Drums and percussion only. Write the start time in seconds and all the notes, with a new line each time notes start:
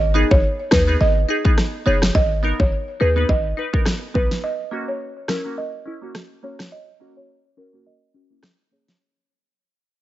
0.31 kick
0.71 kick, cross-stick, snare
1.45 kick
1.58 cross-stick, snare
2.02 cross-stick, snare
2.15 kick
2.60 kick
3.29 kick
3.74 kick
3.85 cross-stick, snare
4.15 kick
4.31 snare
5.28 cross-stick, snare
6.15 cross-stick, snare
6.59 cross-stick, snare
8.43 cross-stick, snare
8.88 snare